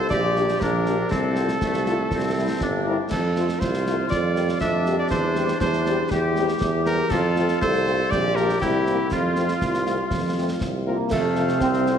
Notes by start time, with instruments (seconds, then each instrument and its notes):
0.10 tuba A#1, woodwind section G4, cornet D5, concert bass drum, snare
0.36 french horn section A#3 D4 G4, snare
0.49 snare
0.60 tuba A#1, woodwind section D4, cornet A#4, concert bass drum, snare
0.86 french horn section A#3 D4 G4, snare
1.11 tuba C2, woodwind section C4, cornet A4, concert bass drum, snare
1.36 french horn section A3 C4 F4, snare
1.49 snare
1.61 tuba C2, woodwind section A3, concert bass drum, snare
1.74 snare
1.86 french horn section A3 C4 F4, snare
2.10 tuba C2, woodwind section C4, concert bass drum, snare
2.36 french horn section G3 C4 E4
2.61 tuba G1, woodwind section D4, concert bass drum, snare
2.86 french horn section G3 C4 E4, cornet A#4
3.11 tuba F2, cornet A4, concert bass drum, snare, crash
3.36 french horn section A3 C4 F4, snare
3.49 snare
3.60 tuba C2, woodwind section F4, cornet C5, concert bass drum, snare
3.74 snare
3.85 french horn section A3 C4 F4, snare
4.10 tuba F2, cornet D5, concert bass drum, snare
4.34 french horn section G3 A#3 G4, snare
4.49 snare
4.60 tuba F2, woodwind section D4, cornet E5, concert bass drum, snare
4.86 french horn section G3 A#3 G4, snare
4.99 cornet D5
5.10 tuba E2, cornet C5, concert bass drum, snare
5.36 french horn section G3 C4 G4, snare
5.48 snare
5.60 tuba E2, cornet C5, concert bass drum, snare
5.73 snare
5.86 french horn section G3 C4 G4, snare
6.11 tuba E2, cornet G4, woodwind section G4, concert bass drum, snare
6.36 french horn section G3 C4 G4, snare
6.48 snare
6.60 tuba E2, concert bass drum, snare
6.86 french horn section G3 C4 G4, cornet A#4, snare
7.10 tuba F2, woodwind section F4, cornet A4, concert bass drum, snare, crash
7.36 french horn section A3 C4 F4, snare
7.48 snare
7.61 tuba C2, woodwind section A4, cornet C5, concert bass drum, snare
7.74 snare
7.86 french horn section A3 C4 F4, snare
8.10 tuba A#1, woodwind section G4, cornet D5, concert bass drum, snare
8.35 french horn section A#3 D4 G4, cornet A#4, snare
8.49 snare
8.61 tuba C2, woodwind section E4, cornet G4, concert bass drum, snare
8.86 french horn section A#3 C4 E4, snare
9.11 tuba F2, cornet F4, woodwind section F4, concert bass drum, snare
9.36 french horn section A3 C4 F4, snare
9.48 snare
9.61 tuba C2, concert bass drum, snare
9.74 snare
9.86 french horn section A3 C4 F4, snare
10.11 tuba F2, concert bass drum, snare
10.35 french horn section A3 C4 F4
10.61 tuba C2, concert bass drum, snare
10.86 french horn section A3 C4 F4, trombone section A#3, cornet A#4
11.11 tuba F2, euphonium C3, trombone section A3, cornet A4, woodwind section C5 F5, concert bass drum, snare, crash
11.36 french horn section F4 A4, snare
11.49 snare
11.60 tuba C2, trombone section C4, cornet C5, concert bass drum, snare
11.74 snare
11.86 french horn section F4 A4, snare